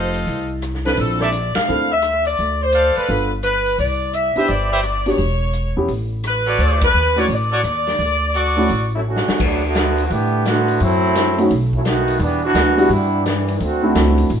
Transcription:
Already playing: upright bass F1, trumpet section A4 C5 D#5 F5, saxophone section C5
0.14 open hi-hat
0.27 upright bass C2, open hi-hat
0.62 cross-stick, closed hi-hat
0.75 snare
0.85 grand piano C4 D4 E4 A4, saxophone section B4, snare, open hi-hat
0.97 upright bass A#1, saxophone section A4, open hi-hat
1.20 trumpet section A4 C5 D5 E5, saxophone section D5, snare
1.32 closed hi-hat
1.55 saxophone section F5, muted upright bass stroke, snare, ride
1.68 upright bass D2, grand piano C4 D4 E4 A4
1.92 saxophone section E5
2.02 cross-stick, closed hi-hat
2.25 saxophone section D5, open hi-hat
2.37 upright bass D2, open hi-hat
2.62 saxophone section C5
2.72 trumpet section A4 C5 D5 F5, closed hi-hat
2.96 saxophone section B4, muted upright bass stroke, open hi-hat
3.07 upright bass G1, grand piano B3 D4 F4 A4, open hi-hat
3.43 saxophone section B4, cross-stick, closed hi-hat
3.66 open hi-hat
3.78 upright bass C2, saxophone section D5, open hi-hat
4.13 saxophone section E5, closed hi-hat
4.35 grand piano B3 D4 E4 G4, trumpet section G4 B4 C5 E5, muted upright bass stroke, open hi-hat
4.48 upright bass G1, saxophone section D5, open hi-hat
4.72 trumpet section G4 B4 C5 E5
4.83 cross-stick, closed hi-hat
5.06 grand piano B3 D4 F#4 G4, saxophone section C#5, open hi-hat
5.18 upright bass E1, open hi-hat
5.53 closed hi-hat
5.77 upright bass E2, grand piano B3 C#4 E4 G4
5.88 upright bass A1, open hi-hat
6.24 cross-stick, closed hi-hat
6.28 saxophone section B4
6.46 trumpet section F#4 A4 C#5 D5, open hi-hat
6.58 upright bass D2, saxophone section D5, open hi-hat
6.81 saxophone section B4, kick, ride
6.94 upright bass D#2
7.16 grand piano A3 C#4 E4 F#4, trumpet section F#4 A4 C#5 D5, saxophone section C#5, open hi-hat
7.28 upright bass A1, open hi-hat
7.33 saxophone section D5
7.51 trumpet section F#4 A4 C#5 D5
7.63 upright bass D#2, cross-stick, closed hi-hat
7.87 snare, open hi-hat
7.99 upright bass D2, open hi-hat
8.34 trumpet section F#4 A4 D5 C#6, closed hi-hat
8.57 grand piano A3 C#4 E4 F#4, open hi-hat
8.69 upright bass A1, open hi-hat
8.95 trombone section F#3 A3 C#4 E4
9.08 trombone section D3 A3 C#4 F#4
9.16 snare
9.28 muted upright bass stroke, snare
9.40 upright bass D2, trombone section F#3 A3 B3 D4, kick, crash
9.65 trombone section D3 A3 B3 F#4
9.75 snare, closed hi-hat
9.98 open hi-hat
10.05 trombone section F#4
10.10 upright bass A2, trombone section D3 A3 B3 G4, open hi-hat
10.45 trombone section D3 A3 B3 F#4, snare, closed hi-hat
10.68 open hi-hat
10.80 upright bass F#2, trombone section F#3 A3 C4 E4, open hi-hat
11.15 snare, closed hi-hat
11.37 grand piano A3 B3 C#4 D#4 F#4, open hi-hat
11.51 upright bass B1, open hi-hat
11.73 trombone section F#3 A3 C#4 E4, kick
11.85 trombone section D#3 A3 B3 F#4, snare, closed hi-hat
12.08 open hi-hat
12.19 upright bass E2, trombone section E3 G3 B3 D4, open hi-hat
12.44 trombone section E3 B3 D4 F#4
12.54 upright bass D2, snare, closed hi-hat
12.77 grand piano G3 B3 D4 E4 F#4, open hi-hat
12.89 upright bass G2, trombone section G3 B3 D4 E4, open hi-hat
13.25 trombone section E3 G3 B3 D4, snare, closed hi-hat
13.48 open hi-hat
13.60 upright bass D2, trombone section D3 A3 C4 F#4, open hi-hat
13.82 grand piano A3 C4 D4 E4 F#4
13.95 upright bass C#2, snare, closed hi-hat
14.18 open hi-hat
14.30 upright bass A1, open hi-hat

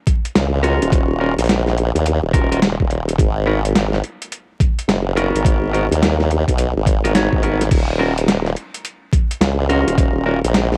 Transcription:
0.07 kick, closed hi-hat
0.25 closed hi-hat
0.35 wobble bass C#2, snare, closed hi-hat
0.63 clean electric guitar C#4 F4 F#4 A#4, closed hi-hat
0.81 wobble bass D#1, closed hi-hat
0.92 kick, closed hi-hat
1.20 clean electric guitar C#4 F4 F#4 A#4
1.38 wobble bass A#1, closed hi-hat
1.40 closed hi-hat
1.44 closed hi-hat
1.46 closed hi-hat
1.47 snare, closed hi-hat
1.49 closed hi-hat
1.67 snare
1.78 closed hi-hat
1.95 wobble bass D#2, closed hi-hat
2.06 closed hi-hat
2.23 wobble bass D#1
2.33 clean electric guitar C#4 F4 F#4 A#4, kick, closed hi-hat
2.51 clean electric guitar C#4 F4 F#4 A#4, closed hi-hat
2.62 snare, closed hi-hat
2.80 wobble bass D#1, kick
2.90 closed hi-hat
3.09 closed hi-hat
3.18 wobble bass G#1, kick, closed hi-hat
3.46 clean electric guitar B3 D#4 F#4 A#4
3.65 closed hi-hat
3.75 wobble bass G#1, snare, closed hi-hat
3.93 snare
4.04 closed hi-hat
4.22 closed hi-hat
4.32 closed hi-hat
4.60 kick, closed hi-hat
4.79 closed hi-hat
4.88 wobble bass F#1, snare, closed hi-hat
5.16 clean electric guitar B3 D#4 F#4 A#4, closed hi-hat
5.35 wobble bass G#1, closed hi-hat
5.45 kick, closed hi-hat
5.73 clean electric guitar B3 D#4 F#4 A#4, closed hi-hat
5.91 wobble bass D#2, closed hi-hat
6.03 snare, closed hi-hat
6.20 snare
6.31 closed hi-hat
6.48 wobble bass B1, kick, closed hi-hat
6.58 closed hi-hat
6.76 wobble bass G#1
6.86 kick, closed hi-hat
7.04 wobble bass G#1, clean electric guitar B3 D#4 F#4 A#4, closed hi-hat
7.14 clean electric guitar B3 D#4 F#4 C#5, snare, closed hi-hat
7.32 wobble bass G#1, kick
7.43 clean electric guitar B3 D#4 F#4 A#4, closed hi-hat
7.61 snare, closed hi-hat
7.71 wobble bass D#1, kick, closed hi-hat, crash
7.99 clean electric guitar C#4 F4 F#4 A#4
8.18 closed hi-hat
8.28 wobble bass D#1, snare, closed hi-hat
8.46 snare
8.56 closed hi-hat
8.74 closed hi-hat
8.85 closed hi-hat
9.13 kick, closed hi-hat
9.31 closed hi-hat
9.41 wobble bass C#2, snare, closed hi-hat
9.69 clean electric guitar C#4 F4 F#4 A#4, closed hi-hat
9.87 wobble bass D#1, closed hi-hat
9.98 kick, closed hi-hat
10.26 clean electric guitar C#4 F4 F#4 A#4
10.44 wobble bass A#1, closed hi-hat
10.54 snare, closed hi-hat
10.73 snare

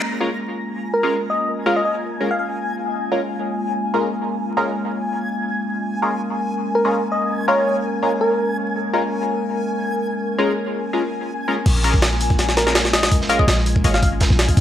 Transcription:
Already playing: ambient pad G#3 A#3 C#4
0.02 ambient pad F4, synth texture G#5
0.21 synth stab G#3 C#4 F4 A#4
0.94 soft synth lead A#4
1.03 synth stab G#3 C#4 F4 A#4
1.30 soft synth lead D#5
1.66 synth stab G#3 C#4 F4 A#4, soft synth lead F5
1.76 soft synth lead D#5
1.85 soft synth lead D#5
2.20 synth stab G#3 C#4 F4 A#4
2.31 soft synth lead F5
2.39 soft synth lead F5
3.12 synth stab G#3 C#4 F4 A#4
3.94 synth stab G#3 C#4 F4 A#4
4.57 synth stab G#3 C#4 F4 A#4
5.84 ambient pad A#4
6.02 synth stab G#3 C#4 F4 A#4
6.75 soft synth lead A#4
6.85 synth stab G#3 C#4 F4 A#4
7.12 soft synth lead D#5
7.48 synth stab G#3 C#4 F4 A#4, soft synth lead C#5
8.02 synth stab G#3 C#4 F4 A#4
8.21 soft synth lead A#4
8.93 synth stab G#3 C#4 F4 A#4
10.38 synth stab G#3 C#4 F4 A#4
10.93 synth stab G#3 C#4 F4 A#4
11.48 synth stab G#3 C#4 F4 A#4
11.66 808-style bass A#1, ambient pad G#3 A#3 C#4 F4, synth texture G#5, kick, closed hi-hat, open hi-hat, crash
11.83 synth stab G#3 C#4 F4 A#4, closed hi-hat, open hi-hat
11.94 kick, closed hi-hat
12.02 snare, closed hi-hat, open hi-hat
12.12 closed hi-hat
12.20 closed hi-hat, open hi-hat
12.30 kick, closed hi-hat
12.39 snare, closed hi-hat, open hi-hat
12.49 snare
12.57 soft synth lead A#4, snare, closed hi-hat, open hi-hat
12.67 synth stab G#3 C#4 F4 A#4, snare
12.75 snare, closed hi-hat, open hi-hat
12.84 snare, closed hi-hat
12.93 soft synth lead D#5, snare, closed hi-hat, open hi-hat
13.03 snare, closed hi-hat, open hi-hat
13.11 kick, closed hi-hat, open hi-hat
13.21 snare
13.29 synth stab G#3 C#4 F4 A#4, soft synth lead F5, closed hi-hat, open hi-hat
13.39 soft synth lead D#5, kick
13.48 808-style bass A#1, soft synth lead D#5, snare, closed hi-hat, open hi-hat
13.58 snare
13.66 closed hi-hat, open hi-hat
13.76 kick
13.84 808-style bass G#1, synth stab G#3 C#4 F4 A#4, closed hi-hat, open hi-hat
13.94 soft synth lead F5, snare
14.02 soft synth lead F5, kick, closed hi-hat, open hi-hat
14.20 kick, snare, closed hi-hat, open hi-hat
14.30 808-style bass A#1, snare
14.39 snare, closed hi-hat, open hi-hat
14.49 kick, open hi-hat
14.57 808-style bass A#1, kick, closed hi-hat, open hi-hat

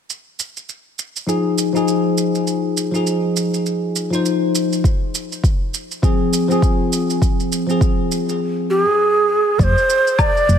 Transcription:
0.10 shaker
0.39 shaker
0.57 shaker
0.69 shaker
0.99 shaker
1.16 shaker
1.27 tine electric piano F3 D#4 G#4, shaker
1.58 shaker
1.73 tine electric piano F3 D#4 G#4, shaker
1.88 shaker
2.18 shaker
2.35 shaker
2.47 shaker
2.77 shaker
2.92 tine electric piano F3 D#4, shaker
2.96 tine electric piano G#4
3.07 shaker
3.37 shaker
3.54 shaker
3.66 shaker
3.96 shaker
4.11 tine electric piano F3 D#4, shaker
4.15 tine electric piano C5
4.26 shaker
4.55 shaker
4.73 shaker
4.84 kick, shaker
5.15 shaker
5.32 shaker
5.44 kick, shaker
5.74 shaker
5.91 shaker
6.02 tine electric piano F3 C4 G#4, kick, shaker
6.33 shaker
6.48 tine electric piano F3 C4, shaker
6.52 tine electric piano G#4
6.62 kick, shaker
6.93 shaker
7.10 shaker
7.22 kick, shaker
7.40 shaker
7.52 shaker
7.67 tine electric piano F3 C4, shaker
7.71 tine electric piano G#4
7.81 kick, shaker
8.12 shaker
8.29 shaker
8.70 ney G4
8.84 ney G#4
9.59 fretless electric bass F1, ney D5, kick, shaker
9.63 ney C5
9.78 shaker
9.90 shaker
10.07 shaker
10.19 ney D5, kick, low woodblock, shaker
10.37 shaker
10.48 fretless electric bass F1, shaker

